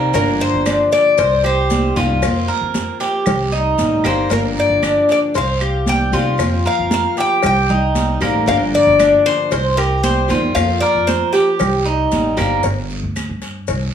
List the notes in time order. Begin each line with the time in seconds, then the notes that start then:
Already playing: C3 D#3 G3 A#3 C4 G4
0.13 G1 D3 F3 A#3 D4 G4 A#4, cowbell, high conga, long guiro, maracas
0.40 C5, high conga, maracas
0.54 G1
0.66 D4, cowbell, high conga, short guiro, claves, maracas
0.92 D5, cowbell, high conga, short guiro, maracas
1.17 C2 C5, muted steel-string acoustic guitar stroke, cowbell, high conga, long guiro, maracas
1.44 G4 C5, high conga, claves, maracas
1.70 D#3 G3 C4 G4, cowbell, high conga, short guiro, maracas
1.96 C2 D#3 G3 C4 F4 G4, cowbell, high conga, short guiro, maracas
2.22 F2 F3 A#3 C4 F4, cowbell, long guiro, claves, maracas
2.48 A#4, high conga, maracas
2.61 F2
2.74 cowbell, high conga, short guiro, maracas
3.00 G4, cowbell, high conga, short guiro, maracas
3.26 C2, muted steel-string acoustic guitar stroke, cowbell, high conga, low conga, long guiro, claves, maracas
3.52 D#4, high conga, maracas
3.78 A1 D#3 G3 C4 G4, cowbell, high conga, short guiro, maracas
4.04 G1 D#3 G3 A#3 C4 G4 C5, cowbell, short guiro, claves, maracas
4.29 G1 D3 F3 A#3 D4 G4 A#4, cowbell, high conga, long guiro, maracas
4.57 D5, high conga, maracas
4.70 G1
4.82 D4, cowbell, high conga, short guiro, claves, maracas
5.09 D5, cowbell, high conga, short guiro, maracas
5.34 C2 C5 F5, muted steel-string acoustic guitar stroke, cowbell, high conga, long guiro, maracas
5.61 G4, high conga, claves, maracas
5.86 D#3 G3 C4 G4 G5, cowbell, high conga, short guiro, maracas
6.12 C3 D#3 G3 C4 F4 G4, cowbell, high conga, short guiro, maracas
6.38 F2 F3 A#3 C4 F4, cowbell, long guiro, claves, maracas
6.66 A#4 F5, high conga, maracas
6.79 F2
6.91 F5, cowbell, high conga, short guiro, maracas
7.17 G4 G5, cowbell, high conga, short guiro, maracas
7.42 C2 G5, muted steel-string acoustic guitar stroke, cowbell, high conga, low conga, long guiro, claves, maracas
7.69 D#4, high conga, low conga, maracas
7.95 D#3 G3 C4 G4, cowbell, high conga, short guiro, maracas
8.20 A1 D#3 G3 A#3 C4 G4, cowbell, short guiro, claves, maracas
8.46 G1 D3 F3 A#3 D4 G4 F5, cowbell, high conga, long guiro, maracas
8.74 D5, high conga, maracas
8.86 G1
8.99 D4, cowbell, high conga, short guiro, claves, maracas
9.26 C5, cowbell, high conga, short guiro, maracas
9.51 C2 C5, muted steel-string acoustic guitar stroke, cowbell, high conga, long guiro, maracas
9.77 G4 A#4, high conga, claves, maracas
10.03 D#3 G3 C4 G4 C5, cowbell, high conga, short guiro, maracas
10.28 E2 D#3 G3 C4 F4 G4, cowbell, high conga, short guiro, maracas
10.54 F2 F3 A#3 C4 F4 F5, cowbell, long guiro, claves, maracas
10.80 A#4 D5, high conga, maracas
10.95 F2
11.07 C5, cowbell, high conga, short guiro, maracas
11.33 G4, cowbell, high conga, short guiro, maracas
11.59 C2, muted steel-string acoustic guitar stroke, cowbell, high conga, low conga, long guiro, claves, maracas
11.85 D#4, high conga, maracas
12.11 A1 D#3 G3 C4 G4, cowbell, high conga, short guiro, maracas
12.37 G1 D#3 G3 A#3 C4 G4, cowbell, high conga, short guiro, claves, maracas
12.63 G1, cowbell, high conga, long guiro, maracas
12.90 high conga, maracas
13.03 D2
13.16 cowbell, high conga, short guiro, claves, maracas
13.29 G2
13.42 cowbell, high conga, short guiro, maracas
13.67 C2, cowbell, high conga, long guiro, maracas